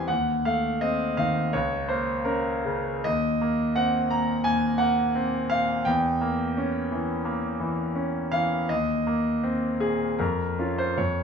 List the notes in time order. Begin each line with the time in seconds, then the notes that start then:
Already playing: E2 E3 G3 C4 E5 F5 G5 G#5
0.08 D#2 F#5
0.45 A3 F5
0.81 C4 D#5
1.17 D#3 F5
1.53 C#2 C#5
1.89 A#3 C5
2.25 C#4 A#4
2.65 C#3
3.04 D#2 D#5
3.41 A#3
3.76 C4 F#5
4.10 A#2 A#5
4.44 D#2 G#5
4.78 A#3 F#5
5.15 C4
5.50 A#2 F5
5.85 E2 G5
6.21 A#3
6.57 C#4
6.91 E3
7.25 A#3
7.60 E3
7.96 C#4
8.32 E3 F5
8.69 D#2 D#5
9.07 A#3
9.43 C4
9.80 A#2 G#4
10.19 F2 A#4
10.59 C#4 F4
10.78 C5
10.97 F2 C#5